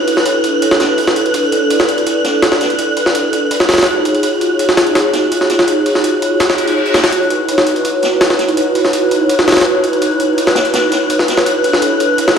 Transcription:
Already playing: analog synth pad D4 E4 A4 B4 C#5, synth texture F#6
0.07 closed hi-hat, open hi-hat
0.17 snare
0.26 closed hi-hat
0.44 closed hi-hat
0.62 closed hi-hat
0.71 snare
0.80 snare, closed hi-hat
0.97 closed hi-hat, open hi-hat
1.07 snare
1.16 closed hi-hat
1.26 closed hi-hat
1.34 analog synth pad D5, closed hi-hat
1.43 closed hi-hat
1.52 closed hi-hat
1.70 closed hi-hat
1.80 snare
1.88 closed hi-hat
1.97 closed hi-hat
2.06 closed hi-hat
2.24 snare, closed hi-hat
2.42 snare, closed hi-hat
2.52 snare
2.61 snare, closed hi-hat
2.70 closed hi-hat
2.78 closed hi-hat
2.97 closed hi-hat, open hi-hat
3.06 snare
3.15 closed hi-hat
3.33 closed hi-hat
3.51 analog synth pad D#4 F4 F#4 G#4 C#5, closed hi-hat
3.60 snare
3.69 snare, closed hi-hat
3.74 snare, closed hi-hat
3.78 snare, closed hi-hat
3.83 snare, closed hi-hat
3.87 closed hi-hat
4.05 closed hi-hat
4.15 closed hi-hat
4.23 closed hi-hat
4.33 closed hi-hat
4.41 closed hi-hat
4.59 closed hi-hat
4.69 snare
4.77 snare, closed hi-hat
4.87 closed hi-hat
4.95 snare, closed hi-hat
5.13 snare, closed hi-hat
5.32 closed hi-hat
5.41 snare
5.49 snare, closed hi-hat
5.59 snare
5.67 closed hi-hat
5.86 closed hi-hat, open hi-hat
5.95 snare
6.04 closed hi-hat
6.22 closed hi-hat
6.40 snare, closed hi-hat, reverse cymbal
6.49 snare, closed hi-hat
6.58 closed hi-hat
6.67 closed hi-hat
6.76 closed hi-hat
6.86 closed hi-hat
6.94 snare, closed hi-hat
7.04 snare, closed hi-hat
7.12 analog synth pad D#4 E4 B4, synth texture F#6, closed hi-hat
7.22 closed hi-hat
7.30 closed hi-hat
7.48 closed hi-hat
7.58 snare, closed hi-hat
7.67 closed hi-hat
7.76 closed hi-hat
7.85 closed hi-hat
8.02 snare, closed hi-hat
8.21 snare, closed hi-hat
8.30 snare
8.39 snare, closed hi-hat
8.48 closed hi-hat
8.57 closed hi-hat
8.75 closed hi-hat, open hi-hat
8.85 snare
8.93 closed hi-hat
9.11 closed hi-hat
9.29 closed hi-hat
9.39 snare
9.48 snare, closed hi-hat
9.52 snare, closed hi-hat
9.57 snare, closed hi-hat
9.61 snare, closed hi-hat
9.66 closed hi-hat
9.84 closed hi-hat
9.93 closed hi-hat
10.02 closed hi-hat
10.11 closed hi-hat
10.20 closed hi-hat
10.38 closed hi-hat
10.47 snare, closed hi-hat
10.55 snare, closed hi-hat
10.65 closed hi-hat
10.74 snare, closed hi-hat
10.91 snare, closed hi-hat
11.10 closed hi-hat
11.19 snare
11.28 snare, closed hi-hat
11.37 snare
11.46 analog synth pad D4 E4 A4, closed hi-hat
11.64 closed hi-hat, open hi-hat
11.73 snare
11.82 closed hi-hat
12.00 closed hi-hat
12.18 closed hi-hat
12.28 snare

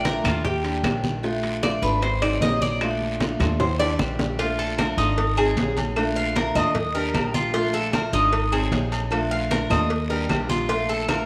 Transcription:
Already playing: upright bass A#1
0.05 steel-string acoustic guitar F3 A3 D4 F4, cuban tres A#4, high bongo, high conga, high timbale, low timbale, short guiro
0.24 upright bass D#2, steel-string acoustic guitar A3 D4 F4, cuban tres F4, high conga, low conga, high timbale, short guiro, claves
0.44 cuban tres G4, muted steel-string acoustic guitar stroke, high bongo, high conga, low conga, long guiro
0.64 steel-string acoustic guitar G3 D4 G4, high bongo, high conga, high timbale
0.83 upright bass A#1, steel-string acoustic guitar D#3 G3 D4 G4, high bongo, low bongo, high conga, high timbale, low timbale, short guiro, claves
1.04 high bongo, high conga, short guiro
1.23 steel-string acoustic guitar F3 A3 D4 F4, high bongo, high conga, long guiro
1.43 high bongo, high conga, high timbale
1.63 steel-string acoustic guitar F3 A3 D4 F4, cuban tres D5, high bongo, high conga, high timbale, low timbale, short guiro, claves
1.82 upright bass G#1, steel-string acoustic guitar A3 D4 F4, cuban tres B4, short guiro
2.02 cuban tres C5, muted steel-string acoustic guitar stroke, high bongo, high conga, high timbale, long guiro
2.22 steel-string acoustic guitar F#3 C4 D#4 G#4, cuban tres D5, high bongo, high conga, high timbale, claves
2.41 upright bass A#1, steel-string acoustic guitar F#3 C4 D#4 G#4, cuban tres D#5, high bongo, low bongo, high conga, low timbale, short guiro
2.61 cuban tres D5, high bongo, high conga, short guiro
2.81 steel-string acoustic guitar F3 A3 D4 F4, high bongo, high conga, high timbale, long guiro, claves
3.00 high bongo, high conga
3.20 steel-string acoustic guitar F3 A3 D4 F4, high bongo, high conga, high timbale, low timbale, short guiro
3.40 upright bass D#2, steel-string acoustic guitar A3 D4 F4, high bongo, high conga, low conga, high timbale, short guiro, claves
3.60 cuban tres C5, muted steel-string acoustic guitar stroke, high bongo, high conga, low conga, high timbale, long guiro
3.79 steel-string acoustic guitar G3 D4 G4, cuban tres D5, low bongo, high conga, high timbale
3.99 upright bass A#1, steel-string acoustic guitar D#3 G3 D4 G4, low bongo, high conga, short guiro, claves
4.19 low bongo, high conga, low timbale, short guiro
4.39 steel-string acoustic guitar F3 A3 D4 F4, cuban tres F4, cowbell, high conga, long guiro
4.59 cuban tres A4, high conga
4.78 steel-string acoustic guitar F3 A3 D4 F4, cuban tres A#4, cowbell, high conga, low timbale, low agogo, short guiro, claves
4.97 upright bass G#1, steel-string acoustic guitar A3 D4 F4, cuban tres D#4, short guiro
5.18 muted steel-string acoustic guitar stroke, cowbell, high conga, low agogo, long guiro
5.37 steel-string acoustic guitar F#3 C4 D#4 G#4, cuban tres G#4, cowbell, high conga, low agogo, claves
5.57 upright bass A#1, steel-string acoustic guitar F#3 C4 D#4 G#4, cowbell, high conga, low timbale, short guiro
5.77 cowbell, high conga, low agogo, short guiro
5.96 steel-string acoustic guitar F3 A3 D4 F4, cowbell, high conga, low agogo, long guiro, claves
6.16 cuban tres F5, high conga
6.36 steel-string acoustic guitar F3 A3 D4 F4, cuban tres A#4, cowbell, high conga, low timbale, low agogo, short guiro
6.55 upright bass D#2, steel-string acoustic guitar A3 D4 F4, cuban tres D#5, high conga, low conga, low agogo, short guiro, claves
6.75 muted steel-string acoustic guitar stroke, cowbell, high conga, low conga, long guiro
6.95 steel-string acoustic guitar G3 D4 G4, cuban tres A#4, high conga, low agogo
7.14 upright bass A#1, steel-string acoustic guitar D#3 G3 D4 G4, cowbell, high conga, low timbale, low agogo, short guiro, claves
7.34 cuban tres F4, high conga, short guiro
7.53 steel-string acoustic guitar F3 A3 D4 F4, cuban tres F4, cowbell, high conga, long guiro
7.74 cuban tres A4, high conga
7.93 steel-string acoustic guitar F3 A3 D4 F4, cuban tres A#4, cowbell, high conga, low timbale, low agogo, short guiro, claves
8.13 upright bass G#1, steel-string acoustic guitar A3 D4 F4, cuban tres D#4, high conga, short guiro
8.32 muted steel-string acoustic guitar stroke, cowbell, high conga, low agogo, long guiro
8.52 steel-string acoustic guitar F#3 C4 D#4 G#4, cuban tres G#4, cowbell, high conga, low agogo, claves
8.72 upright bass A#1, steel-string acoustic guitar F#3 C4 D#4 G#4, cowbell, high conga, low timbale, short guiro
8.92 cowbell, low agogo, short guiro
9.11 steel-string acoustic guitar F3 A3 D4 F4, cowbell, high conga, low agogo, long guiro, claves
9.31 cuban tres F5, high conga
9.50 steel-string acoustic guitar F3 A3 D4 F4, cuban tres A#4, cowbell, high conga, low timbale, low agogo, short guiro
9.70 upright bass D#2, steel-string acoustic guitar A3 D4 F4, cuban tres D#5, high conga, low conga, low agogo, short guiro, claves
9.90 muted steel-string acoustic guitar stroke, cowbell, long guiro
10.10 steel-string acoustic guitar G3 D4 G4, cuban tres A#4, high conga, low agogo
10.29 upright bass A#1, steel-string acoustic guitar D#3 G3 D4 G4, cowbell, high conga, low timbale, low agogo, short guiro, claves
10.49 cuban tres F4, high conga, short guiro
10.69 steel-string acoustic guitar F3 A3 D4 F4, cuban tres F4, cowbell, high conga, long guiro
10.89 cuban tres A4, high conga
11.08 steel-string acoustic guitar F3 A3 D4 F4, cuban tres A#4, cowbell, high conga, low timbale, low agogo, short guiro, claves

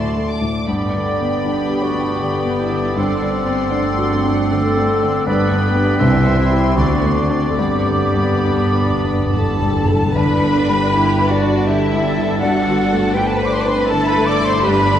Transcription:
Already playing: double bass section D2, cello section D2, grand piano D2 A2 A3 D4 A4, viola section F#3, bassoon A3, french horn section A3 D4, clarinet F#4, oboe D5, violin section D5 A5 C6
0.16 grand piano A3
0.29 violin section D6
0.41 grand piano A2
0.66 double bass section G1, grand piano G2, cello section G2, french horn section B3, bassoon B3, clarinet D5, oboe D5, violin section D5 G5 B5
0.94 grand piano D3
1.21 grand piano B3
1.44 viola section G3, grand piano D4
1.70 grand piano G4
1.82 viola section A3, clarinet F#4
1.94 grand piano D4
2.20 grand piano D3, viola section B3, clarinet G4
2.45 grand piano B3
2.59 viola section E4
2.69 grand piano D3
2.95 grand piano G2, timpani G2, french horn section C4 D4, bassoon C4, viola section D4, clarinet A4, violin section F#5 C6
3.20 grand piano D3
3.34 viola section B3
3.46 grand piano C4
3.72 viola section A3, grand piano D4
3.98 grand piano F#4
4.13 clarinet C4
4.26 grand piano D4
4.51 grand piano D3, clarinet A4
4.77 grand piano C4
5.03 grand piano D3
5.27 double bass section G1, grand piano G2, timpani G2, cello section G2, bassoon B3, french horn section B3, clarinet B4, oboe D5, violin section D5 G5 B5
5.50 grand piano B3
5.75 grand piano D4 G4
5.99 grand piano C2, double bass section C2, cello section C3, viola section G3, bassoon C4, french horn section C4 E4, oboe E5, violin section E5 C6
6.27 grand piano C4
6.37 clarinet E4
6.51 grand piano E4 G4
6.75 grand piano D2, double bass section D2, cello section D3, viola section B3, french horn section D4, clarinet F#4, oboe D5, violin section D5
7.04 grand piano A3
7.16 viola section A3
7.30 grand piano D4 C5
7.51 clarinet A4
7.56 double bass section G1, timpani G2, cello section G2, grand piano G2, viola section B3, bassoon B3, clarinet G4, violin section B5
7.66 timpani G2
7.74 timpani G2
7.82 timpani G2
7.86 grand piano D3
7.99 timpani G2
8.06 timpani G2
8.14 timpani G2, grand piano G3
8.33 timpani G2
8.42 timpani G2, french horn section B3, grand piano D4
8.50 timpani G2
8.58 timpani G2
8.67 timpani G2
8.72 timpani G2, grand piano B4
8.84 timpani G2
8.93 timpani G2
9.02 timpani G2, grand piano D4
9.10 timpani G2
9.19 timpani G2
9.27 timpani G2
9.31 grand piano D3, viola section A4, flute A5, violin section A5
9.36 timpani G2
9.46 timpani G2
9.53 timpani G2
9.62 timpani G2, grand piano G3
9.69 timpani G2
9.78 timpani G2
9.85 timpani G2
9.90 timpani G2, grand piano D3
10.02 timpani G2
10.15 double bass section G1, timpani G2, grand piano G2, violin section D4 B5, viola section B4, cello section B4, flute B5
10.42 grand piano D3
10.54 cello section D4
10.68 grand piano G3
10.92 grand piano D4, cello section E4, violin section G4
11.19 grand piano B4
11.29 viola section D4, cello section F#4, violin section F#4 D5, flute D5
11.44 grand piano D4
11.67 grand piano D3, violin section E4 E5, viola section E4, cello section G4, flute E5
11.92 grand piano G3
12.04 violin section D4, cello section A4
12.19 grand piano D3
12.39 grand piano G2, violin section D4 F#5, viola section F#4, flute F#5
12.67 grand piano D3
12.93 grand piano A3
13.14 violin section C4 G5, grand piano D4, viola section G4, cello section B4, flute G5
13.27 viola section A4, flute A5, violin section A5
13.38 viola section B4, flute B5, violin section B5
13.42 grand piano C5, flute D6
13.47 viola section D5, violin section D6
13.53 viola section C5, flute C6, violin section C6
13.61 viola section D5, flute D6, violin section D6
13.66 grand piano D4, viola section C5, flute C6, violin section C6
13.78 viola section B4, flute B5, violin section B5
13.88 grand piano D3, violin section E4 A5, viola section A4, cello section A4, flute A5
14.07 viola section B4, flute B5, violin section B5
14.17 grand piano A3
14.26 viola section D5, flute D6, violin section D6
14.41 grand piano D3
14.45 viola section C5, flute C6, violin section C6
14.64 double bass section G1, grand piano G2, violin section D4 B5, cello section G4, viola section B4, flute B5
14.93 grand piano D3

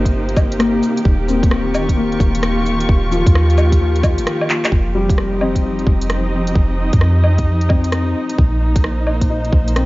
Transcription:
Already playing: 808-style bass G1, string section C3 A#3 D#4 G4 C5
0.05 kick, closed hi-hat
0.29 closed hi-hat
0.36 kick, cabasa, low woodblock
0.52 closed hi-hat
0.59 felt piano A#3, cross-stick, closed hi-hat
0.83 cabasa
0.97 closed hi-hat
1.05 808-style bass D#1, string section D#3, kick
1.28 felt piano C4, cabasa
1.43 string section C#6, kick, closed hi-hat
1.50 string section F4, cross-stick
1.75 cabasa, low woodblock
1.89 kick, closed hi-hat
1.97 felt piano A#3
2.12 closed hi-hat
2.20 808-style bass D#1, kick, cabasa
2.35 closed hi-hat
2.43 cross-stick, closed hi-hat
2.66 cabasa
2.81 closed hi-hat
2.89 808-style bass D#1, kick
3.11 felt piano F3, cabasa
3.26 808-style bass D#2, kick, closed hi-hat
3.35 cross-stick
3.50 closed hi-hat, cabasa
3.58 cabasa, low woodblock
3.72 kick, closed hi-hat
3.96 closed hi-hat
4.03 kick, cabasa, low woodblock
4.18 808-style bass G1, closed hi-hat
4.27 cross-stick, closed hi-hat
4.41 low woodblock
4.50 clap, cabasa
4.65 clap, closed hi-hat, low woodblock
4.72 808-style bass F1, string section F3, kick
4.93 felt piano G3, string section C4
5.10 kick, closed hi-hat
5.18 cross-stick
5.28 string section D#4
5.36 string section D#5
5.41 felt piano C4, low woodblock
5.55 kick, closed hi-hat
5.79 closed hi-hat
5.86 808-style bass F1, kick
6.01 closed hi-hat
6.10 cross-stick, closed hi-hat
6.47 closed hi-hat
6.55 808-style bass F1, kick
6.93 808-style bass F2, kick, closed hi-hat
7.01 cross-stick
7.24 low woodblock
7.38 kick, closed hi-hat
7.61 closed hi-hat
7.69 felt piano C4, kick, low woodblock
7.84 closed hi-hat
7.92 cross-stick, closed hi-hat
8.29 closed hi-hat
8.38 808-style bass A#1, string section A#2, kick
8.61 string section A#3
8.76 kick, closed hi-hat
8.82 string section C5, cross-stick
9.07 low woodblock
9.21 kick, closed hi-hat
9.29 felt piano D#4
9.45 closed hi-hat
9.53 808-style bass A#1, kick
9.68 closed hi-hat
9.76 felt piano C4, cross-stick, closed hi-hat

